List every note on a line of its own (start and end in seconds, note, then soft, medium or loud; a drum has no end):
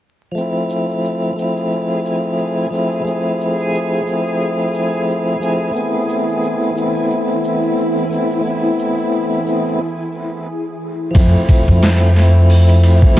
0.32 1.32 F3 medium
0.32 1.33 A3 medium
0.32 9.80 G#4 medium
0.37 1.35 C4 medium
0.37 1.36 E4 medium
0.37 shaker soft
0.70 shaker medium
0.90 shaker soft
1.05 shaker soft
1.24 shaker soft
1.33 2.67 F3 medium
1.33 2.68 A3 medium
1.39 2.70 C4 medium
1.39 2.71 E4 medium
1.39 shaker medium
1.57 shaker soft
1.71 shaker soft
1.90 shaker soft
2.06 shaker medium
2.24 shaker soft
2.38 shaker soft
2.58 shaker soft
2.71 3.00 F3 medium
2.71 3.02 A3 medium
2.71 3.03 C4 medium
2.71 shaker medium
2.75 3.04 E4 medium
2.92 shaker soft
3.02 4.01 F3 medium
3.02 4.03 A3 medium
3.07 4.04 C4 medium
3.07 shaker soft
3.11 4.06 E4 medium
3.41 shaker medium
3.60 shaker soft
3.75 shaker soft
3.92 shaker soft
4.03 5.36 F3 medium
4.03 5.38 A3 medium
4.07 5.39 C4 medium
4.07 shaker medium
4.12 5.41 E4 medium
4.27 shaker soft
4.41 shaker soft
4.60 shaker soft
4.75 shaker medium
4.93 shaker soft
5.10 shaker soft
5.27 shaker soft
5.40 5.71 F3 medium
5.40 5.70 A3 medium
5.40 5.73 C4 medium
5.40 shaker medium
5.45 5.74 E4 medium
5.61 shaker soft
5.71 6.71 A3 medium
5.71 6.73 B3 medium
5.71 11.16 E4 medium
5.76 6.74 C4 medium
5.76 shaker soft
5.81 6.76 E4 medium
6.09 shaker medium
6.29 shaker soft
6.43 shaker soft
6.62 shaker soft
6.72 8.06 A3 medium
6.72 8.07 B3 medium
6.77 8.09 C4 medium
6.77 shaker medium
6.82 8.11 E4 medium
6.96 shaker soft
7.10 shaker soft
7.29 shaker soft
7.44 shaker medium
7.63 shaker soft
7.78 shaker soft
7.97 shaker soft
8.10 8.40 A3 medium
8.10 8.42 B3 medium
8.10 8.42 C4 medium
8.10 shaker medium
8.14 8.43 E4 medium
8.31 shaker soft
8.41 9.41 A3 medium
8.41 9.42 B3 medium
8.46 9.44 C4 medium
8.46 shaker medium
8.51 9.46 E4 medium
8.65 shaker soft
8.79 shaker medium
8.98 shaker soft
9.13 shaker soft
9.32 shaker soft
9.45 9.79 A3 medium
9.45 9.80 B3 medium
9.45 9.81 C4 medium
9.45 shaker medium
9.49 9.82 E4 medium
9.66 shaker soft
11.11 12.10 F3 medium
11.11 12.12 A3 medium
11.11 13.20 E4 medium
11.15 11.32 F2 medium
11.15 12.14 C4 medium
11.15 kick loud
11.15 ride medium
11.15 shaker soft
11.20 12.15 E4 medium
11.49 kick medium
11.49 ride medium
11.49 shaker medium
11.68 12.99 F2 medium
11.68 ride soft
11.68 shaker soft
11.83 snare loud
11.83 ride medium
11.83 shaker soft
12.01 shaker soft
12.12 13.20 F3 medium
12.12 13.20 A3 medium
12.16 13.20 C4 medium
12.16 snare soft
12.16 ride medium
12.16 shaker medium
12.21 13.20 E4 medium
12.35 shaker soft
12.50 open hi-hat medium
12.50 shaker soft
12.69 ride soft
12.69 shaker soft
12.83 ride medium
12.83 shaker medium
13.02 kick medium
13.02 shaker soft
13.17 ride medium